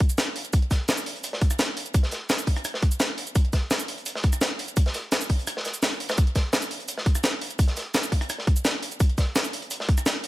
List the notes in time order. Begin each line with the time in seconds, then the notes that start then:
0.00 kick, closed hi-hat
0.10 closed hi-hat, cabasa
0.18 snare, closed hi-hat, cabasa
0.36 closed hi-hat, open hi-hat
0.45 closed hi-hat, cabasa
0.53 kick, closed hi-hat, cabasa
0.62 closed hi-hat
0.71 kick, snare, closed hi-hat, cabasa
0.88 snare, closed hi-hat, cabasa
0.98 closed hi-hat, cabasa
1.06 closed hi-hat, open hi-hat
1.16 closed hi-hat
1.24 closed hi-hat, cabasa
1.33 snare
1.41 kick, closed hi-hat
1.51 cross-stick, closed hi-hat, cabasa
1.59 snare, closed hi-hat, cabasa
1.77 closed hi-hat, open hi-hat
1.86 closed hi-hat, cabasa
1.94 kick, closed hi-hat, cabasa
2.03 snare, closed hi-hat
2.11 snare, closed hi-hat, cabasa
2.29 snare, closed hi-hat, cabasa
2.39 cabasa
2.47 kick, closed hi-hat, open hi-hat
2.56 cross-stick, closed hi-hat
2.65 cross-stick, closed hi-hat, cabasa
2.74 snare
2.82 kick, closed hi-hat
2.92 closed hi-hat, cabasa
3.00 snare, closed hi-hat, cabasa
3.18 closed hi-hat, open hi-hat
3.27 closed hi-hat, cabasa
3.36 kick, closed hi-hat, cabasa
3.45 closed hi-hat
3.53 kick, snare, closed hi-hat, cabasa
3.71 snare, closed hi-hat, cabasa
3.80 closed hi-hat, cabasa
3.88 closed hi-hat, open hi-hat
3.98 closed hi-hat
4.06 closed hi-hat, cabasa
4.15 snare
4.23 kick, closed hi-hat
4.33 cross-stick, closed hi-hat, cabasa
4.41 snare, closed hi-hat, cabasa
4.59 closed hi-hat, open hi-hat
4.68 closed hi-hat, cabasa
4.77 kick, closed hi-hat, cabasa
4.86 snare, closed hi-hat
4.94 snare, closed hi-hat, cabasa
5.12 snare, closed hi-hat, cabasa
5.21 cabasa
5.29 kick, closed hi-hat, open hi-hat
5.39 closed hi-hat
5.47 cross-stick, closed hi-hat, cabasa
5.57 snare
5.65 snare, closed hi-hat, cabasa
5.74 closed hi-hat, cabasa
5.83 snare, closed hi-hat, cabasa
5.93 closed hi-hat
6.00 closed hi-hat, open hi-hat
6.09 cross-stick, snare, closed hi-hat, cabasa
6.18 kick, closed hi-hat, cabasa
6.27 closed hi-hat
6.35 kick, snare, closed hi-hat, cabasa
6.53 snare, closed hi-hat, cabasa
6.62 closed hi-hat, cabasa
6.71 closed hi-hat, open hi-hat
6.80 closed hi-hat
6.88 closed hi-hat, cabasa
6.98 snare
7.06 kick, closed hi-hat
7.15 cross-stick, closed hi-hat, cabasa
7.23 snare, closed hi-hat, cabasa
7.41 closed hi-hat, open hi-hat
7.51 closed hi-hat, cabasa
7.59 kick, closed hi-hat, cabasa
7.68 snare, closed hi-hat
7.77 snare, closed hi-hat, cabasa
7.94 snare, closed hi-hat, cabasa
8.04 cabasa
8.12 kick, closed hi-hat, open hi-hat
8.21 cross-stick, closed hi-hat
8.30 cross-stick, closed hi-hat, cabasa
8.38 snare
8.47 kick, closed hi-hat
8.56 closed hi-hat, cabasa
8.65 snare, closed hi-hat, cabasa
8.82 closed hi-hat, open hi-hat
8.92 closed hi-hat, cabasa
9.00 kick, closed hi-hat, cabasa
9.09 closed hi-hat
9.18 kick, snare, closed hi-hat, cabasa
9.36 snare, closed hi-hat, cabasa
9.45 closed hi-hat, cabasa
9.53 closed hi-hat, open hi-hat
9.62 closed hi-hat
9.71 closed hi-hat, cabasa
9.80 snare
9.89 kick, closed hi-hat
9.98 cross-stick, closed hi-hat, cabasa
10.06 snare, closed hi-hat, cabasa
10.24 closed hi-hat, open hi-hat